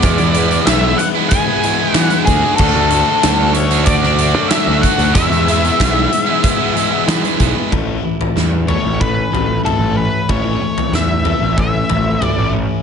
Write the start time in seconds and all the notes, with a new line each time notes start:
Already playing: D5
0.02 E2 E3 G#3 B3, kick, closed hi-hat
0.06 E4
0.18 E2, closed hi-hat
0.34 E3 G#3 B3 E4, closed hi-hat
0.51 B3 E4, closed hi-hat
0.55 G#3
0.66 B1 E3 G#3 B3 E5, snare, closed hi-hat
0.71 E4
0.83 G#3 B3 E4
0.98 E3 G#3 B3 F#5, muted distorted electric guitar stroke, closed hi-hat
1.02 E4
1.16 G#3 B3 E4
1.29 G#5, kick, closed hi-hat
1.48 G#3 B3 E4
1.63 E3 G#3 B3 E4, closed hi-hat
1.80 G#3 B3 E4
1.94 E3 G#3 B3 F#5, snare, closed hi-hat
1.99 E4
2.10 B3 E4, closed hi-hat
2.15 G#3
2.25 D2 D3 A3 G#4, kick, closed hi-hat
2.30 D4 F#4
2.44 A3 D4 F#4
2.56 D2 D3 A4, kick, crash
2.60 A3 D4 F#4
2.76 D2
2.90 D3 A3 D4, closed hi-hat
2.95 F#4
3.07 A3 D4 F#4
3.23 D2 D3 A3 D4 F#4, snare, closed hi-hat
3.39 A3 D4 F#4
3.54 D3 A3 C#5, muted distorted electric guitar stroke, closed hi-hat
3.58 D4 F#4
3.71 A3 D4 F#4, closed hi-hat
3.86 D5, kick, closed hi-hat
4.02 A3 D4 F#4, snare
4.18 D3 A3 D4 F#4, closed hi-hat
4.34 F#2 A3 D4 F#4
4.48 D3 A3 D4 E5, snare, closed hi-hat
4.54 F#4
4.67 D2 A3 D4 F#4
4.81 D3 A3 D4 F#4 F#5, kick, closed hi-hat
4.98 D2 D4 F#4, closed hi-hat
5.02 A3
5.14 E2 E3 G#3 B3 E5, kick, closed hi-hat
5.19 E4
5.30 E2, closed hi-hat
5.47 E3 G#3 B3 E4, closed hi-hat
5.64 G#3 B3 E4, closed hi-hat
5.79 B1 E3 G#3 B3 E4, kick, snare, closed hi-hat
5.93 G#3 B3 E4
6.10 E3 G#3 B3, muted distorted electric guitar stroke, closed hi-hat
6.15 E4
6.27 G#3 B3 E4
6.44 kick, closed hi-hat
6.59 G#3 B3 E4
6.74 E3 G#3 B3 E4, closed hi-hat
6.91 G#3 B3 E4
7.07 E3 G#3 B3 E4, snare, closed hi-hat
7.23 G#3 B3 E4, closed hi-hat
7.38 B1 E3 G#3 B3 E4, kick, closed hi-hat
7.55 G#3 B3 E4
7.71 A1 A2 E3 A3, kick, floor tom
8.03 A2 E3
8.21 floor tom
8.36 E2 A2 E3, snare
8.67 A2 E3 A3 C#5, floor tom
8.85 A1
9.00 A2 E3 C#4 B4, kick
9.32 A1 A2 E3 A3, floor tom
9.63 A2 E3 A3 E4 A4, floor tom, mid tom
9.79 A1
9.96 A2 E3 C#4 B4
10.29 A1 A2 E3 A3 C#5, kick, floor tom
10.62 A2 E3
10.78 floor tom
10.92 E2 A2 E3 E5, snare
11.24 A2 E3 A3, floor tom
11.41 A1
11.56 A2 E3 C#4, kick
11.61 E5
11.89 A1 A2 E3 A3, floor tom
12.21 A2 E3 A3 E4 D5, floor tom, mid tom
12.38 A1
12.53 A2 E3 C#4